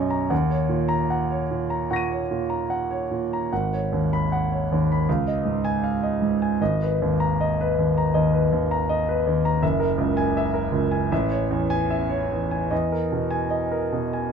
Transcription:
0.00 0.34 F#2 medium
0.00 0.34 C#5 medium
0.00 0.34 D#5 medium
0.00 0.10 A#5 medium
0.00 0.29 C#6 soft
0.00 0.30 A#6 soft
0.00 0.31 D#7 soft
0.10 0.30 A#5 soft
0.30 1.86 D#2 soft
0.30 0.62 F#5 soft
0.50 0.82 C#5 soft
0.69 1.02 A#2 soft
0.89 1.21 A#5 medium
1.10 1.42 F#5 soft
1.30 1.62 C#5 soft
1.51 1.83 A#2 soft
1.70 2.02 A#5 soft
1.91 2.22 A#2 soft
1.91 2.22 F#5 soft
1.91 3.47 C#6 soft
1.91 3.49 A#6 soft
1.96 3.50 D#7 soft
2.11 2.42 C#5 soft
2.31 2.62 A#2 soft
2.50 2.82 A#5 soft
2.70 3.02 F#5 soft
2.91 3.23 C#5 soft
3.11 3.44 A#2 soft
3.33 3.52 A#5 soft
3.53 5.04 G#1 soft
3.53 3.84 F#5 soft
3.73 4.04 C#5 soft
3.92 4.24 D#2 soft
4.13 4.44 B5 medium
4.32 4.62 F#5 soft
4.52 4.81 C#5 soft
4.72 5.01 D#2 soft
4.92 5.09 B5 soft
5.09 6.57 C#2 medium
5.09 5.38 F5 soft
5.27 5.57 D#5 soft
5.45 5.75 G#2 soft
5.64 5.95 G#5 medium
5.84 6.14 F5 soft
6.03 6.34 D#5 soft
6.22 6.53 G#2 soft
6.42 6.61 G#5 soft
6.61 8.10 G#1 soft
6.61 6.92 D#5 soft
6.82 7.12 B4 soft
7.02 7.32 D#2 soft
7.20 7.50 A#5 medium
7.41 7.70 D#5 soft
7.61 7.89 B4 soft
7.79 8.07 D#2 soft
7.98 8.26 A#5 soft
8.14 8.44 D#2 soft
8.14 8.44 D#5 soft
8.33 8.63 B4 soft
8.52 8.81 D#2 soft
8.71 9.00 A#5 medium
8.89 9.18 D#5 medium
9.09 9.37 B4 soft
9.27 9.55 D#2 soft
9.45 9.63 A#5 medium
9.63 11.08 F#1 medium
9.63 9.92 E5 soft
9.80 10.10 A#4 soft
9.98 10.28 C#2 medium
10.17 10.47 G#5 medium
10.37 10.66 E5 medium
10.54 10.84 A#4 soft
10.72 11.03 C#2 soft
10.91 11.11 G#5 soft
11.12 12.67 A1 medium
11.12 11.43 E5 soft
11.31 11.62 C#5 soft
11.51 11.82 E2 soft
11.70 12.02 G#5 medium
11.90 12.22 E5 soft
12.09 12.42 C#5 soft
12.32 12.64 E2 soft
12.51 12.71 G#5 soft
12.71 14.28 E2 soft
12.71 13.03 D#5 soft
12.92 13.24 A#4 soft
13.12 13.44 B2 soft
13.31 13.63 G#5 medium
13.50 13.83 D#5 soft
13.72 14.04 A#4 soft
13.92 14.24 B2 soft
14.13 14.32 G#5 soft

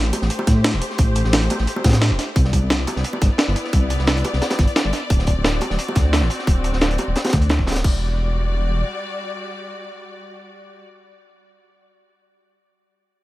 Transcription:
0.00 0.12 A1 medium
0.00 2.33 A3 medium
0.00 2.33 G4 medium
0.00 2.33 C5 medium
0.13 closed hi-hat medium
0.13 high bongo medium
0.22 0.29 A1 medium
0.22 snare medium
0.30 closed hi-hat medium
0.39 high bongo medium
0.47 0.75 A2 loud
0.47 kick loud
0.47 snare soft
0.47 closed hi-hat medium
0.64 snare loud
0.64 closed hi-hat medium
0.73 0.81 E1 medium
0.73 snare soft
0.82 closed hi-hat medium
0.90 snare soft
0.98 1.23 A1 loud
0.98 kick loud
0.98 closed hi-hat medium
1.15 closed hi-hat medium
1.25 1.49 A1 medium
1.25 snare soft
1.33 snare loud
1.33 closed hi-hat medium
1.43 closed hi-hat soft
1.50 closed hi-hat medium
1.50 high bongo medium
1.58 1.67 A1 medium
1.58 snare soft
1.67 closed hi-hat medium
1.76 high bongo medium
1.84 2.12 A2 loud
1.84 kick loud
1.84 snare medium
1.84 closed hi-hat medium
1.89 snare medium
1.89 closed hi-hat medium
1.93 snare loud
1.93 closed hi-hat medium
2.01 snare loud
2.01 closed hi-hat medium
2.11 2.18 E1 medium
2.19 snare soft
2.19 closed hi-hat medium
2.36 2.60 C2 medium
2.36 5.07 B3 medium
2.36 5.07 E4 medium
2.36 7.80 D5 medium
2.36 kick loud
2.36 closed hi-hat medium
2.45 snare soft
2.53 kick medium
2.53 closed hi-hat medium
2.62 2.86 C2 medium
2.70 snare loud
2.70 closed hi-hat medium
2.87 closed hi-hat medium
2.87 high bongo medium
2.96 3.04 C2 medium
2.96 snare medium
3.04 closed hi-hat medium
3.13 high bongo medium
3.22 3.30 G1 loud
3.22 kick loud
3.22 snare soft
3.22 closed hi-hat medium
3.38 snare loud
3.38 closed hi-hat medium
3.48 3.55 G1 medium
3.48 snare soft
3.56 closed hi-hat medium
3.65 snare soft
3.73 3.98 C2 medium
3.73 kick loud
3.73 closed hi-hat medium
3.90 closed hi-hat medium
3.99 4.23 C2 medium
3.99 snare soft
4.07 snare loud
4.07 closed hi-hat medium
4.17 closed hi-hat soft
4.24 closed hi-hat medium
4.24 high bongo medium
4.33 4.41 C2 medium
4.33 snare soft
4.42 snare loud
4.42 closed hi-hat medium
4.50 snare medium
4.50 closed hi-hat medium
4.50 high bongo medium
4.59 4.67 G1 medium
4.59 kick loud
4.59 snare soft
4.59 closed hi-hat medium
4.68 closed hi-hat soft
4.76 snare loud
4.76 closed hi-hat medium
4.85 4.92 G1 medium
4.93 snare soft
4.93 closed hi-hat medium
5.10 5.35 D1 loud
5.10 7.82 C4 medium
5.10 7.82 F#4 medium
5.10 kick loud
5.10 closed hi-hat medium
5.19 snare soft
5.27 kick medium
5.27 closed hi-hat medium
5.36 5.60 D1 medium
5.44 snare loud
5.44 closed hi-hat medium
5.61 closed hi-hat medium
5.61 high bongo medium
5.70 5.78 D1 medium
5.70 snare soft
5.79 closed hi-hat medium
5.88 high bongo medium
5.95 6.23 D2 medium
5.95 kick medium
5.95 snare soft
5.95 closed hi-hat medium
6.13 snare loud
6.13 closed hi-hat medium
6.22 6.29 A1 medium
6.22 snare soft
6.30 closed hi-hat medium
6.39 snare soft
6.47 6.72 D1 medium
6.47 kick loud
6.47 closed hi-hat medium
6.64 closed hi-hat medium
6.73 6.97 D1 medium
6.73 snare soft
6.81 snare loud
6.81 closed hi-hat medium
6.91 closed hi-hat soft
6.98 closed hi-hat medium
6.98 high bongo medium
7.08 7.15 D1 medium
7.16 snare loud
7.16 closed hi-hat medium
7.25 snare medium
7.25 closed hi-hat medium
7.25 high bongo medium
7.29 snare medium
7.29 closed hi-hat medium
7.32 7.60 D2 loud
7.32 kick medium
7.32 snare soft
7.32 closed hi-hat medium
7.42 closed hi-hat soft
7.49 snare loud
7.49 closed hi-hat medium
7.59 7.83 D1 medium
7.59 kick medium
7.67 snare medium
7.67 snare soft
7.67 closed hi-hat medium
7.72 snare medium
7.72 closed hi-hat medium
7.75 snare medium
7.75 closed hi-hat medium
7.84 8.83 E1 medium
7.84 10.83 G3 medium
7.84 10.83 F#4 medium
7.84 10.83 D5 medium
7.84 kick loud
7.84 crash medium

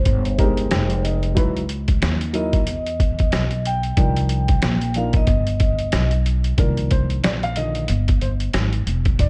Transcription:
0.00 1.01 C5 medium
0.05 0.68 G1 medium
0.05 kick loud
0.05 closed hi-hat medium
0.25 closed hi-hat medium
0.38 0.46 G3 medium
0.38 1.31 D#4 medium
0.38 1.32 G4 medium
0.38 1.32 A#4 medium
0.38 0.69 A#5 medium
0.38 kick medium
0.38 closed hi-hat medium
0.44 1.34 G#3 medium
0.57 closed hi-hat medium
0.71 1.34 F1 medium
0.71 1.02 G5 medium
0.71 snare loud
0.71 closed hi-hat medium
0.90 closed hi-hat medium
1.04 1.35 D#5 medium
1.04 closed hi-hat medium
1.23 closed hi-hat soft
1.35 1.99 C#2 loud
1.35 1.60 F#3 medium
1.35 1.61 D#4 medium
1.35 1.61 E4 medium
1.35 1.61 B4 medium
1.35 kick loud
1.35 closed hi-hat medium
1.57 closed hi-hat medium
1.69 closed hi-hat medium
1.88 kick medium
1.88 closed hi-hat medium
2.02 2.64 D#2 loud
2.02 snare loud
2.02 closed hi-hat medium
2.21 closed hi-hat medium
2.33 2.58 F#3 medium
2.33 2.59 D#4 medium
2.33 2.59 E4 medium
2.33 2.60 A#4 medium
2.33 3.61 D#5 medium
2.33 closed hi-hat medium
2.53 kick medium
2.53 closed hi-hat medium
2.67 3.30 E2 medium
2.67 closed hi-hat medium
2.86 closed hi-hat medium
3.00 kick medium
3.00 closed hi-hat medium
3.19 kick medium
3.19 closed hi-hat medium
3.32 3.95 B1 medium
3.32 snare loud
3.32 closed hi-hat medium
3.51 closed hi-hat soft
3.65 4.92 G5 loud
3.65 closed hi-hat medium
3.83 closed hi-hat soft
3.97 4.60 C2 medium
3.97 4.90 F3 medium
3.97 4.90 D4 medium
3.97 4.90 D#4 medium
3.97 4.91 A#4 medium
3.97 kick loud
3.97 closed hi-hat medium
4.16 closed hi-hat medium
4.29 closed hi-hat medium
4.48 kick medium
4.48 closed hi-hat medium
4.62 5.25 A#1 loud
4.62 snare loud
4.62 closed hi-hat medium
4.81 closed hi-hat medium
4.94 5.20 F3 medium
4.94 5.20 D4 medium
4.94 5.21 D#4 medium
4.94 5.21 A#4 medium
4.94 5.05 F5 medium
4.94 closed hi-hat medium
5.13 6.09 D#5 medium
5.13 kick medium
5.13 closed hi-hat medium
5.27 5.90 G1 loud
5.27 kick loud
5.27 closed hi-hat medium
5.47 closed hi-hat medium
5.60 kick medium
5.60 closed hi-hat medium
5.79 closed hi-hat medium
5.92 6.56 B1 loud
5.92 snare loud
5.92 closed hi-hat medium
6.11 closed hi-hat soft
6.26 closed hi-hat medium
6.44 closed hi-hat soft
6.57 7.21 C2 medium
6.57 7.52 D#3 medium
6.57 7.52 F3 medium
6.57 7.52 A#3 soft
6.57 7.53 D4 medium
6.57 6.89 A#4 medium
6.57 kick loud
6.57 closed hi-hat medium
6.77 closed hi-hat medium
6.91 7.25 C5 medium
6.91 kick medium
6.91 closed hi-hat medium
7.10 closed hi-hat medium
7.24 7.86 A#1 medium
7.24 7.29 D5 medium
7.24 snare loud
7.24 closed hi-hat medium
7.43 7.56 F5 loud
7.43 closed hi-hat soft
7.56 7.86 D3 soft
7.56 7.86 D#3 soft
7.56 7.86 F3 soft
7.56 7.86 A#3 soft
7.56 8.24 D#5 loud
7.56 closed hi-hat medium
7.75 closed hi-hat medium
7.88 8.51 G1 loud
7.88 closed hi-hat medium
8.08 kick medium
8.08 closed hi-hat medium
8.21 8.29 C5 medium
8.21 closed hi-hat medium
8.40 closed hi-hat medium
8.54 8.85 G#1 medium
8.54 snare loud
8.54 closed hi-hat medium
8.73 closed hi-hat soft
8.87 9.18 E1 medium
8.87 closed hi-hat medium
9.05 kick medium
9.05 closed hi-hat soft
9.19 9.29 F1 loud
9.19 9.29 D5 medium
9.19 kick loud
9.19 closed hi-hat loud

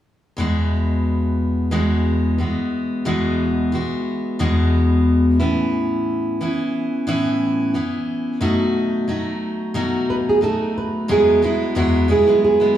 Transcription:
0.37 1.70 E2 medium
0.37 1.70 B2 medium
0.37 1.71 E3 medium
0.37 1.71 G#3 medium
0.37 1.72 B3 medium
0.37 1.71 F#4 medium
1.71 2.39 E2 medium
1.71 2.39 B2 medium
1.71 2.38 E3 medium
1.71 2.38 G#3 medium
1.71 2.40 B3 medium
1.71 2.39 F#4 medium
2.38 3.05 E3 soft
2.38 3.05 G#3 soft
2.38 3.06 B3 soft
2.38 3.06 F#4 soft
3.05 3.73 E2 medium
3.05 3.73 B2 medium
3.05 3.72 E3 medium
3.05 3.72 G#3 medium
3.05 3.74 B3 medium
3.05 3.74 F#4 medium
3.72 4.39 E3 soft
3.72 4.39 G#3 medium
3.72 4.40 B3 soft
3.72 4.39 F#4 medium
4.39 5.40 E2 medium
4.39 5.40 B2 medium
4.39 5.41 E3 medium
4.39 5.40 G#3 medium
4.39 5.40 B3 medium
4.39 5.39 F#4 medium
5.40 6.41 A2 soft
5.40 6.39 E3 soft
5.40 6.41 B3 medium
5.40 6.41 C#4 medium
5.40 6.40 E4 medium
6.41 7.06 E3 soft
6.41 7.07 B3 medium
6.41 7.07 C#4 medium
6.41 7.07 E4 medium
7.07 7.74 A2 medium
7.07 7.73 E3 medium
7.07 7.75 B3 medium
7.07 7.75 C#4 medium
7.07 7.75 E4 medium
7.74 8.40 E3 soft
7.74 8.41 B3 soft
7.74 8.41 C#4 soft
7.74 8.41 E4 medium
8.41 9.08 B2 medium
8.41 9.07 F#3 medium
8.41 9.07 A3 medium
8.41 9.08 D#4 medium
8.41 9.10 F#4 medium
9.08 9.75 F#3 soft
9.08 9.74 A3 medium
9.08 9.75 D#4 medium
9.08 9.76 F#4 medium
9.74 10.42 B2 medium
9.74 10.41 F#3 medium
9.74 10.41 A3 medium
9.74 10.42 D#4 medium
9.74 10.43 F#4 medium
10.10 10.15 B4 medium
10.29 10.43 G#4 medium
10.41 11.09 F#3 soft
10.41 11.09 A3 soft
10.41 11.09 D#4 soft
10.41 11.09 F#4 medium
10.41 10.77 A4 medium
10.78 11.08 B4 medium
11.08 11.42 E2 medium
11.08 11.43 B2 medium
11.08 11.41 F#3 medium
11.08 11.42 G#3 medium
11.08 11.43 B3 medium
11.08 11.43 E4 medium
11.08 11.45 G#4 medium
11.42 11.75 F#3 soft
11.42 11.75 G#3 medium
11.42 11.75 B3 medium
11.42 11.76 E4 medium
11.42 11.78 E4 medium
11.75 12.09 E2 medium
11.75 12.09 B2 medium
11.75 12.07 F#3 medium
11.75 12.08 G#3 medium
11.75 12.09 B3 medium
11.75 12.10 E4 medium
11.75 12.09 F#4 medium
12.08 12.27 F#3 soft
12.08 12.27 G#3 medium
12.08 12.27 B3 medium
12.08 12.26 E4 medium
12.08 12.43 G#4 medium
12.27 12.61 F#3 soft
12.27 12.60 G#3 soft
12.27 12.60 B3 soft
12.27 12.59 E4 soft
12.45 12.77 G#4 medium
12.60 12.74 F#3 soft
12.60 12.75 G#3 soft
12.60 12.76 B3 soft
12.60 12.76 E4 soft

